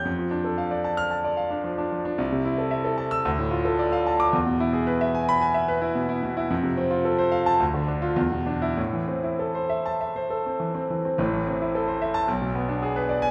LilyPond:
\new Staff \with { instrumentName = "Grand piano" } { \time 4/4 \key a \minor \tempo 4 = 111 << { r4. r16 f'''8 r4. r16 | r4. r16 e'''16 r4. r16 d'''16 | r4. r16 b''8 r4. r16 | r4. r16 a''16 r8. f'16 r8. e'16 |
r4. r16 a''8 r4. r16 | r4. r16 a''16 r4. r16 gis''16 | } \\ { f,16 f16 d'16 a'16 f''16 d''16 a''8 a''16 d''16 f''16 d'16 f16 d'16 f16 d'16 | c,16 c16 e'16 a'16 e''16 a'16 a''8 d,16 a,16 f'16 a'16 d''16 f''16 a''8 | e,16 b,16 e'16 gis'16 b'16 e''16 gis''8 gis''16 e''16 b'16 e'16 b,16 e'16 b,16 e'16 | f,16 c16 c'16 f'16 a'16 c''16 f''8 d,16 d16 d'8 e,16 b,16 d'8 |
a,16 e16 c'16 e'16 a'16 c''16 e''8 e''16 c''16 a'16 c'16 e16 c'16 e16 c'16 | <a,, a,>16 e16 c'16 e'16 a'16 c''16 e''8 b,,16 b,16 b16 d'16 gis'16 b'16 d''8 | } >> }